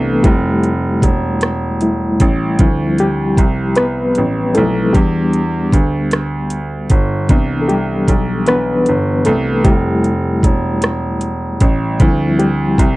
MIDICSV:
0, 0, Header, 1, 4, 480
1, 0, Start_track
1, 0, Tempo, 784314
1, 145, Time_signature, 6, 3, 24, 8
1, 7935, End_track
2, 0, Start_track
2, 0, Title_t, "Reed electric piano"
2, 0, Program_c, 0, 4
2, 0, Control_c, 0, 64, 127
2, 0, Note_on_c, 0, 52, 38
2, 0, Note_on_c, 0, 55, 52
2, 0, Note_on_c, 0, 57, 55
2, 0, Note_on_c, 0, 59, 35
2, 0, Note_on_c, 0, 62, 44
2, 0, Note_on_c, 0, 67, 66
2, 0, Note_on_c, 0, 69, 67
2, 0, Note_on_c, 0, 71, 94
2, 127, Note_off_c, 0, 52, 0
2, 128, Note_off_c, 0, 59, 0
2, 130, Note_off_c, 0, 62, 0
2, 138, Note_off_c, 0, 57, 0
2, 143, Note_off_c, 0, 67, 0
2, 143, Note_on_c, 0, 67, 61
2, 149, Note_off_c, 0, 55, 0
2, 149, Note_on_c, 0, 55, 53
2, 150, Note_on_c, 0, 57, 40
2, 152, Control_c, 0, 64, 0
2, 153, Note_off_c, 0, 71, 0
2, 154, Note_on_c, 0, 64, 43
2, 156, Note_off_c, 0, 69, 0
2, 262, Control_c, 0, 64, 127
2, 1103, Note_off_c, 0, 55, 0
2, 1104, Note_off_c, 0, 57, 0
2, 1107, Note_off_c, 0, 64, 0
2, 1110, Note_on_c, 0, 55, 44
2, 1112, Note_on_c, 0, 57, 40
2, 1115, Note_on_c, 0, 64, 49
2, 1320, Note_off_c, 0, 67, 0
2, 1324, Note_off_c, 0, 55, 0
2, 1325, Note_off_c, 0, 57, 0
2, 1326, Note_off_c, 0, 64, 0
2, 1590, Note_on_c, 0, 53, 50
2, 1591, Note_on_c, 0, 55, 42
2, 1593, Control_c, 0, 64, 0
2, 1594, Note_on_c, 0, 60, 37
2, 1598, Note_on_c, 0, 64, 44
2, 1705, Control_c, 0, 64, 127
2, 1830, Note_off_c, 0, 55, 0
2, 1836, Note_on_c, 0, 67, 74
2, 1838, Note_on_c, 0, 55, 54
2, 1907, Note_off_c, 0, 53, 0
2, 1909, Note_off_c, 0, 60, 0
2, 1911, Note_off_c, 0, 64, 0
2, 2287, Note_off_c, 0, 55, 0
2, 2304, Note_on_c, 0, 71, 99
2, 2310, Note_on_c, 0, 59, 66
2, 2325, Note_off_c, 0, 67, 0
2, 2760, Note_off_c, 0, 71, 0
2, 2763, Note_off_c, 0, 59, 0
2, 2781, Note_on_c, 0, 69, 69
2, 2784, Note_on_c, 0, 55, 37
2, 2785, Note_on_c, 0, 53, 40
2, 2786, Note_on_c, 0, 60, 36
2, 2786, Note_on_c, 0, 64, 45
2, 2792, Note_on_c, 0, 57, 59
2, 3001, Note_off_c, 0, 53, 0
2, 3001, Note_off_c, 0, 55, 0
2, 3002, Note_off_c, 0, 60, 0
2, 3002, Note_off_c, 0, 64, 0
2, 3006, Note_off_c, 0, 69, 0
2, 3012, Note_off_c, 0, 57, 0
2, 3017, Note_on_c, 0, 67, 61
2, 3020, Note_on_c, 0, 55, 51
2, 3025, Note_on_c, 0, 59, 40
2, 3026, Note_on_c, 0, 62, 46
2, 3034, Control_c, 0, 64, 0
2, 3134, Control_c, 0, 64, 127
2, 4197, Note_off_c, 0, 67, 0
2, 4202, Note_off_c, 0, 55, 0
2, 4440, Note_off_c, 0, 59, 0
2, 4441, Note_off_c, 0, 62, 0
2, 4468, Note_on_c, 0, 52, 46
2, 4470, Note_on_c, 0, 59, 41
2, 4472, Control_c, 0, 64, 0
2, 4473, Note_on_c, 0, 62, 53
2, 4580, Control_c, 0, 64, 127
2, 4661, Note_on_c, 0, 69, 51
2, 4703, Note_on_c, 0, 67, 67
2, 4704, Note_off_c, 0, 69, 0
2, 4716, Note_on_c, 0, 55, 52
2, 5166, Note_off_c, 0, 55, 0
2, 5182, Note_off_c, 0, 52, 0
2, 5184, Note_off_c, 0, 59, 0
2, 5186, Note_off_c, 0, 62, 0
2, 5188, Note_on_c, 0, 71, 101
2, 5190, Note_on_c, 0, 52, 44
2, 5192, Note_on_c, 0, 59, 70
2, 5193, Note_on_c, 0, 62, 46
2, 5199, Note_off_c, 0, 67, 0
2, 5404, Note_off_c, 0, 52, 0
2, 5406, Note_off_c, 0, 62, 0
2, 5646, Note_off_c, 0, 59, 0
2, 5666, Note_on_c, 0, 69, 81
2, 5674, Note_on_c, 0, 57, 58
2, 5681, Note_off_c, 0, 71, 0
2, 5893, Note_off_c, 0, 57, 0
2, 5902, Note_on_c, 0, 55, 49
2, 5902, Note_on_c, 0, 67, 71
2, 5904, Note_on_c, 0, 57, 42
2, 5908, Note_on_c, 0, 64, 50
2, 5913, Note_off_c, 0, 69, 0
2, 5913, Control_c, 0, 64, 0
2, 6025, Control_c, 0, 64, 127
2, 7079, Note_off_c, 0, 67, 0
2, 7083, Note_off_c, 0, 55, 0
2, 7320, Note_off_c, 0, 57, 0
2, 7322, Note_off_c, 0, 64, 0
2, 7349, Note_on_c, 0, 53, 51
2, 7352, Control_c, 0, 64, 0
2, 7353, Note_on_c, 0, 55, 45
2, 7353, Note_on_c, 0, 60, 43
2, 7358, Note_on_c, 0, 64, 52
2, 7444, Control_c, 0, 64, 127
2, 7585, Note_on_c, 0, 67, 64
2, 7589, Note_off_c, 0, 55, 0
2, 7597, Note_on_c, 0, 55, 52
2, 7935, Note_off_c, 0, 53, 0
2, 7935, Note_off_c, 0, 55, 0
2, 7935, Note_off_c, 0, 60, 0
2, 7935, Note_off_c, 0, 64, 0
2, 7935, Note_off_c, 0, 67, 0
2, 7935, End_track
3, 0, Start_track
3, 0, Title_t, "Grand piano"
3, 0, Program_c, 1, 0
3, 0, Note_on_c, 1, 36, 77
3, 152, Note_off_c, 1, 36, 0
3, 153, Note_on_c, 1, 29, 86
3, 604, Note_off_c, 1, 29, 0
3, 630, Note_on_c, 1, 28, 76
3, 1348, Note_off_c, 1, 28, 0
3, 1353, Note_on_c, 1, 33, 78
3, 1565, Note_off_c, 1, 33, 0
3, 1591, Note_on_c, 1, 38, 77
3, 2044, Note_off_c, 1, 38, 0
3, 2070, Note_on_c, 1, 36, 64
3, 2523, Note_off_c, 1, 36, 0
3, 2557, Note_on_c, 1, 33, 70
3, 2791, Note_off_c, 1, 33, 0
3, 2799, Note_on_c, 1, 35, 80
3, 3030, Note_on_c, 1, 40, 97
3, 3032, Note_off_c, 1, 35, 0
3, 3483, Note_off_c, 1, 40, 0
3, 3508, Note_on_c, 1, 38, 73
3, 4202, Note_off_c, 1, 38, 0
3, 4229, Note_on_c, 1, 31, 74
3, 4443, Note_off_c, 1, 31, 0
3, 4469, Note_on_c, 1, 36, 71
3, 4923, Note_off_c, 1, 36, 0
3, 4949, Note_on_c, 1, 35, 67
3, 5403, Note_off_c, 1, 35, 0
3, 5439, Note_on_c, 1, 31, 74
3, 5649, Note_off_c, 1, 31, 0
3, 5671, Note_on_c, 1, 36, 85
3, 5908, Note_off_c, 1, 36, 0
3, 5908, Note_on_c, 1, 29, 84
3, 6362, Note_off_c, 1, 29, 0
3, 6387, Note_on_c, 1, 28, 73
3, 7106, Note_off_c, 1, 28, 0
3, 7107, Note_on_c, 1, 33, 75
3, 7322, Note_off_c, 1, 33, 0
3, 7347, Note_on_c, 1, 38, 100
3, 7802, Note_off_c, 1, 38, 0
3, 7828, Note_on_c, 1, 36, 81
3, 7935, Note_off_c, 1, 36, 0
3, 7935, End_track
4, 0, Start_track
4, 0, Title_t, "Drums"
4, 147, Note_on_c, 9, 36, 98
4, 147, Note_on_c, 9, 42, 57
4, 208, Note_off_c, 9, 36, 0
4, 208, Note_off_c, 9, 42, 0
4, 389, Note_on_c, 9, 42, 38
4, 450, Note_off_c, 9, 42, 0
4, 626, Note_on_c, 9, 36, 69
4, 631, Note_on_c, 9, 42, 66
4, 688, Note_off_c, 9, 36, 0
4, 692, Note_off_c, 9, 42, 0
4, 863, Note_on_c, 9, 42, 55
4, 875, Note_on_c, 9, 37, 86
4, 924, Note_off_c, 9, 42, 0
4, 936, Note_off_c, 9, 37, 0
4, 1106, Note_on_c, 9, 42, 48
4, 1167, Note_off_c, 9, 42, 0
4, 1346, Note_on_c, 9, 42, 70
4, 1347, Note_on_c, 9, 36, 79
4, 1407, Note_off_c, 9, 42, 0
4, 1409, Note_off_c, 9, 36, 0
4, 1584, Note_on_c, 9, 42, 62
4, 1586, Note_on_c, 9, 36, 102
4, 1645, Note_off_c, 9, 42, 0
4, 1648, Note_off_c, 9, 36, 0
4, 1826, Note_on_c, 9, 42, 39
4, 1887, Note_off_c, 9, 42, 0
4, 2065, Note_on_c, 9, 36, 80
4, 2069, Note_on_c, 9, 42, 61
4, 2126, Note_off_c, 9, 36, 0
4, 2130, Note_off_c, 9, 42, 0
4, 2298, Note_on_c, 9, 42, 52
4, 2310, Note_on_c, 9, 37, 88
4, 2359, Note_off_c, 9, 42, 0
4, 2371, Note_off_c, 9, 37, 0
4, 2540, Note_on_c, 9, 42, 51
4, 2601, Note_off_c, 9, 42, 0
4, 2783, Note_on_c, 9, 42, 65
4, 2844, Note_off_c, 9, 42, 0
4, 3025, Note_on_c, 9, 36, 107
4, 3027, Note_on_c, 9, 42, 55
4, 3086, Note_off_c, 9, 36, 0
4, 3088, Note_off_c, 9, 42, 0
4, 3264, Note_on_c, 9, 42, 41
4, 3325, Note_off_c, 9, 42, 0
4, 3504, Note_on_c, 9, 36, 73
4, 3509, Note_on_c, 9, 42, 67
4, 3565, Note_off_c, 9, 36, 0
4, 3570, Note_off_c, 9, 42, 0
4, 3741, Note_on_c, 9, 42, 54
4, 3753, Note_on_c, 9, 37, 93
4, 3802, Note_off_c, 9, 42, 0
4, 3814, Note_off_c, 9, 37, 0
4, 3979, Note_on_c, 9, 42, 50
4, 4040, Note_off_c, 9, 42, 0
4, 4220, Note_on_c, 9, 42, 66
4, 4224, Note_on_c, 9, 36, 90
4, 4281, Note_off_c, 9, 42, 0
4, 4285, Note_off_c, 9, 36, 0
4, 4462, Note_on_c, 9, 42, 63
4, 4464, Note_on_c, 9, 36, 106
4, 4523, Note_off_c, 9, 42, 0
4, 4525, Note_off_c, 9, 36, 0
4, 4709, Note_on_c, 9, 42, 40
4, 4770, Note_off_c, 9, 42, 0
4, 4943, Note_on_c, 9, 36, 70
4, 4946, Note_on_c, 9, 42, 66
4, 5004, Note_off_c, 9, 36, 0
4, 5008, Note_off_c, 9, 42, 0
4, 5180, Note_on_c, 9, 42, 52
4, 5192, Note_on_c, 9, 37, 87
4, 5241, Note_off_c, 9, 42, 0
4, 5253, Note_off_c, 9, 37, 0
4, 5422, Note_on_c, 9, 42, 47
4, 5484, Note_off_c, 9, 42, 0
4, 5660, Note_on_c, 9, 42, 70
4, 5721, Note_off_c, 9, 42, 0
4, 5903, Note_on_c, 9, 42, 65
4, 5904, Note_on_c, 9, 36, 102
4, 5964, Note_off_c, 9, 42, 0
4, 5965, Note_off_c, 9, 36, 0
4, 6146, Note_on_c, 9, 42, 40
4, 6207, Note_off_c, 9, 42, 0
4, 6384, Note_on_c, 9, 36, 71
4, 6390, Note_on_c, 9, 42, 69
4, 6445, Note_off_c, 9, 36, 0
4, 6451, Note_off_c, 9, 42, 0
4, 6621, Note_on_c, 9, 42, 60
4, 6633, Note_on_c, 9, 37, 90
4, 6683, Note_off_c, 9, 42, 0
4, 6695, Note_off_c, 9, 37, 0
4, 6861, Note_on_c, 9, 42, 52
4, 6922, Note_off_c, 9, 42, 0
4, 7102, Note_on_c, 9, 42, 69
4, 7104, Note_on_c, 9, 36, 79
4, 7163, Note_off_c, 9, 42, 0
4, 7165, Note_off_c, 9, 36, 0
4, 7343, Note_on_c, 9, 42, 53
4, 7344, Note_on_c, 9, 36, 111
4, 7404, Note_off_c, 9, 42, 0
4, 7405, Note_off_c, 9, 36, 0
4, 7586, Note_on_c, 9, 42, 38
4, 7647, Note_off_c, 9, 42, 0
4, 7823, Note_on_c, 9, 36, 73
4, 7830, Note_on_c, 9, 42, 67
4, 7885, Note_off_c, 9, 36, 0
4, 7891, Note_off_c, 9, 42, 0
4, 7935, End_track
0, 0, End_of_file